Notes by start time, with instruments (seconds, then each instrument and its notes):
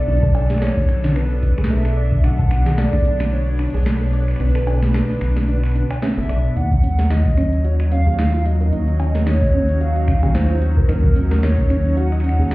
Already playing: analog synth pad B2 B3 D4 A4, soft synth lead D5
0.08 analog synth bass B1, synth arpeggio sound D4, closed hi-hat
0.13 closed hi-hat
0.17 closed hi-hat
0.23 synth arpeggio sound A4, kick, closed hi-hat
0.35 synth arpeggio sound D4, closed hi-hat, cowbell
0.50 synth arpeggio sound G#4, finger snap, snare, closed hi-hat
0.58 synth arpeggio sound A4, finger snap, snare, closed hi-hat
0.62 soft synth lead C#5
0.67 finger snap
0.77 synth arpeggio sound D4, kick, closed hi-hat
0.89 analog synth bass B1, finger snap, closed hi-hat
1.04 synth arpeggio sound D4, snare
1.16 synth arpeggio sound D4, soft synth lead B4, finger snap, closed hi-hat
1.31 closed hi-hat
1.43 synth arpeggio sound D4, kick, closed hi-hat, shaker
1.58 analog synth bass B1, synth arpeggio sound G#4, finger snap, kick
1.64 snare
1.70 synth arpeggio sound A4, soft synth lead E5, closed hi-hat
1.85 synth arpeggio sound A4, finger snap, closed hi-hat
1.97 synth arpeggio sound D5
2.12 kick, closed hi-hat
2.24 analog synth bass B1, synth arpeggio sound D4, soft synth lead F#5, finger snap, closed hi-hat
2.39 synth arpeggio sound A4, kick, closed hi-hat
2.51 synth arpeggio sound D4, finger snap, closed hi-hat
2.66 synth arpeggio sound G#4, snare, closed hi-hat
2.78 synth arpeggio sound A4, soft synth lead D5, snare, closed hi-hat
2.93 synth arpeggio sound D4, finger snap, kick
3.05 analog synth bass B1, closed hi-hat
3.15 analog synth pad B4
3.20 synth arpeggio sound D4, finger snap, snare, closed hi-hat
3.32 synth arpeggio sound D4, soft synth lead C#5, closed hi-hat
3.47 closed hi-hat
3.59 synth arpeggio sound D4, finger snap, closed hi-hat
3.63 closed hi-hat
3.67 closed hi-hat
3.70 closed hi-hat
3.74 analog synth bass B1, synth arpeggio sound G#4, closed hi-hat
3.77 closed hi-hat
3.80 closed hi-hat
3.83 synth arpeggio sound A4, finger snap, snare, closed hi-hat
4.01 synth arpeggio sound A4, closed hi-hat
4.13 synth arpeggio sound D5, closed hi-hat
4.28 finger snap, closed hi-hat, shaker
4.31 finger snap
4.36 finger snap
4.40 analog synth bass B1, synth arpeggio sound D4, soft synth lead B4, finger snap, closed hi-hat
4.45 finger snap
4.49 finger snap
4.55 synth arpeggio sound A4, finger snap, closed hi-hat
4.58 closed hi-hat
4.63 closed hi-hat
4.67 synth arpeggio sound D4, closed hi-hat, cowbell
4.76 closed hi-hat
4.82 synth arpeggio sound G#4, snare, closed hi-hat
4.94 synth arpeggio sound A4, finger snap, snare, closed hi-hat
5.09 synth arpeggio sound D4, closed hi-hat
5.21 analog synth bass B1, finger snap, closed hi-hat
5.36 synth arpeggio sound D4, snare, closed hi-hat
5.48 synth arpeggio sound D4, closed hi-hat
5.64 finger snap, closed hi-hat
5.65 finger snap
5.69 finger snap
5.72 finger snap, closed hi-hat
5.74 synth arpeggio sound D4, finger snap, closed hi-hat
5.90 synth arpeggio sound D5, finger snap, closed hi-hat, cowbell
6.02 synth arpeggio sound C#4, soft synth lead E5, snare, closed hi-hat
6.17 analog synth bass F#1, synth arpeggio sound A4, closed hi-hat
6.29 analog synth bass B1, synth arpeggio sound D5, finger snap, closed hi-hat
6.45 closed hi-hat
6.56 analog synth bass D#2, analog synth pad F#3, synth arpeggio sound D#4, soft synth lead F#5, closed hi-hat
6.72 kick, closed hi-hat
6.83 synth arpeggio sound C#4, closed hi-hat
6.88 analog synth pad C#4
6.98 synth arpeggio sound A#4, snare, closed hi-hat
7.10 synth arpeggio sound D#4, soft synth lead D#5, snare, closed hi-hat
7.26 analog synth pad D#4, kick, closed hi-hat
7.37 analog synth bass D#2, synth arpeggio sound C#4, finger snap, closed hi-hat
7.53 analog synth pad F#4, closed hi-hat
7.64 synth arpeggio sound F#4, soft synth lead C#5, closed hi-hat
7.79 synth arpeggio sound D#5, finger snap, closed hi-hat
7.91 synth arpeggio sound C#4, soft synth lead F5, closed hi-hat
8.07 analog synth bass D#2, synth arpeggio sound G#4, closed hi-hat
8.18 synth arpeggio sound D#4, snare, closed hi-hat
8.34 synth arpeggio sound F4, closed hi-hat
8.45 synth arpeggio sound F#4, soft synth lead D#5, closed hi-hat
8.61 synth arpeggio sound A#4, closed hi-hat, shaker
8.72 analog synth bass D#2, synth arpeggio sound D#4, closed hi-hat
8.88 closed hi-hat
8.99 synth arpeggio sound C#4, closed hi-hat, cowbell
9.15 synth arpeggio sound A#4, snare, closed hi-hat
9.26 synth arpeggio sound D#4, soft synth lead C#5, snare, closed hi-hat
9.42 kick, closed hi-hat
9.54 analog synth bass D#2, synth arpeggio sound C#4
9.69 closed hi-hat
9.80 synth arpeggio sound F#4, soft synth lead F5, closed hi-hat
9.96 synth arpeggio sound D#5, closed hi-hat
10.08 synth arpeggio sound C#4, finger snap, kick, closed hi-hat, shaker
10.23 analog synth bass D#2, synth arpeggio sound G#4, kick, closed hi-hat, cowbell
10.34 synth arpeggio sound D#4, soft synth lead C5, snare, closed hi-hat
10.50 synth arpeggio sound F4, closed hi-hat
10.62 synth arpeggio sound F#4, closed hi-hat
10.77 synth arpeggio sound A#4, kick, closed hi-hat
10.88 analog synth bass D#2, synth arpeggio sound D#4, soft synth lead A#4, finger snap, closed hi-hat
11.04 kick, closed hi-hat
11.16 synth arpeggio sound C#4, closed hi-hat
11.31 synth arpeggio sound A#4, snare, closed hi-hat
11.43 synth arpeggio sound D#4, soft synth lead C#5, snare, closed hi-hat
11.58 kick, closed hi-hat
11.70 analog synth bass D#2, synth arpeggio sound C#4, finger snap, closed hi-hat
11.85 closed hi-hat
11.97 synth arpeggio sound F#4, soft synth lead F#5, closed hi-hat
12.12 synth arpeggio sound D#5, finger snap, closed hi-hat
12.20 synth arpeggio sound C#4, finger snap, closed hi-hat
12.29 finger snap
12.39 analog synth bass D#2, synth arpeggio sound G#4, closed hi-hat
12.51 synth arpeggio sound D#4, soft synth lead F5, snare, closed hi-hat